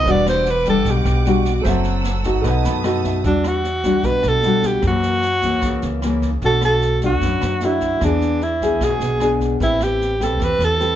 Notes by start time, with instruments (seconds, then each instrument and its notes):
Already playing: alto saxophone D#5
0.04 upright bass E1, nylon-string guitar E3 G3 D4 F#4, grand piano B4 D5, string section F#5 D6, kick, snare
0.09 alto saxophone D5, grand piano F#5
0.26 alto saxophone C5, cross-stick, snare
0.46 snare
0.50 alto saxophone B4
0.65 nylon-string guitar G3 D4, kick, snare
0.69 alto saxophone A4
0.85 upright bass B1, nylon-string guitar B2, kick, snare
0.91 alto saxophone G4
1.05 upright bass B1, cross-stick, snare
1.26 nylon-string guitar G3 D4 F#4, snare
1.45 kick, snare
1.61 upright bass F#1, grand piano A4 C5 E5, string section A4 E6, kick, cross-stick, snare
1.66 nylon-string guitar F#3 C4 E4 A4, grand piano F#5
1.84 snare
2.04 snare
2.24 nylon-string guitar A3 D#4 F#4, kick, snare
2.42 upright bass B1, nylon-string guitar B2, grand piano A4 B4, string section B4 A5 D#6, kick, cross-stick, snare
2.46 grand piano D#5 F#5
2.64 upright bass F#2, grand piano B5, snare
2.84 nylon-string guitar A3 D#4 F#4, grand piano A5, cross-stick, snare
3.04 grand piano E5, kick, snare
3.24 upright bass E2, nylon-string guitar E3 G3 D4 F#4, alto saxophone D4, kick, snare
3.44 alto saxophone F#4, cross-stick, snare
3.64 snare
3.84 nylon-string guitar G3 D4 F#4, kick, snare
4.03 upright bass B1, nylon-string guitar B2, alto saxophone B4, kick, snare
4.23 upright bass B1, cross-stick, snare
4.28 alto saxophone A4
4.43 nylon-string guitar G3 D4 F#4, snare
4.63 alto saxophone G4, kick, snare
4.82 upright bass F#2, nylon-string guitar F#2 E3 A#3 C#4, kick, cross-stick, snare
4.87 alto saxophone F#4
5.03 snare
5.22 snare
5.42 nylon-string guitar E3 A#3 C#4, kick, snare
5.61 upright bass C#2, nylon-string guitar C#3, kick, cross-stick, snare
5.82 upright bass C#2, snare
6.02 nylon-string guitar E3 A#3 C#4, cross-stick, snare
6.22 kick, snare
6.41 upright bass B1, nylon-string guitar B2 A3 D4 F#4, alto saxophone A4, kick, snare
6.61 alto saxophone A4, cross-stick, snare
6.82 snare
7.02 nylon-string guitar A3 D4 F#4, kick, snare
7.06 alto saxophone F#4
7.21 upright bass F#2, nylon-string guitar F#2, kick, snare
7.41 upright bass F#2, cross-stick, snare
7.61 nylon-string guitar A3 D4 F#4, snare
7.65 alto saxophone E4
7.81 kick, snare
8.01 upright bass E2, nylon-string guitar E3 B3 D4 G#4, alto saxophone D4, kick, cross-stick, snare
8.21 snare
8.41 alto saxophone E4, snare
8.61 nylon-string guitar B3 D4 G#4, kick, snare
8.80 upright bass B1, nylon-string guitar B2, alto saxophone G#4, kick, cross-stick, snare
9.00 upright bass B1, snare
9.20 nylon-string guitar B3 D4 G#4, cross-stick, snare
9.40 kick, snare
9.60 upright bass A1, nylon-string guitar A3 C4 G4 B4, alto saxophone E4, kick, snare
9.80 alto saxophone G4, cross-stick, snare
10.01 snare
10.20 nylon-string guitar C4 G4 B4, alto saxophone A4, kick, snare
10.40 upright bass E2, nylon-string guitar E3, alto saxophone B4, kick, snare
10.59 upright bass E2, cross-stick, snare
10.65 alto saxophone A4
10.80 nylon-string guitar C4 G4 B4, snare